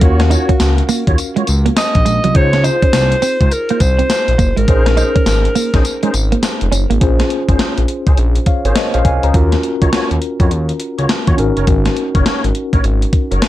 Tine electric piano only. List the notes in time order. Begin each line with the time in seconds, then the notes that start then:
0.01 C#4 F#4 A#4 F5
2.34 D#4 F4 G#4 C5
4.67 C#4 D#4 G#4 C5
7.00 C#4 F4 G#4 C5
8.47 C#5 F5
8.65 A#4 C#5
8.76 C5 D#5
8.94 C#5 F5
9.05 F5 G#5
9.24 A#5
9.33 C#4 F4 F#4 A#4
11.37 C#4 D#4 F#4 A#4